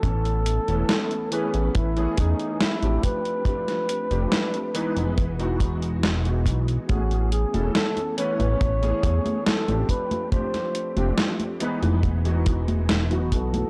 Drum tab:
HH |xxxxxxxxxxxxxxxx|xxxxxxxxxxxxxxxx|xxxxxxxxxxxxxxxx|xxxxxxxxxxxxxxxx|
SD |----o-------o---|-o--o-------o---|----o-------o---|-o--o-------o---|
CG |----------------|----------------|oo-ooo-ooo-ooo-o|oo-ooo-ooo-ooo-o|
BD |o-------o-o---o-|o-------o-o---o-|o-------o-o---o-|o-------o-o---o-|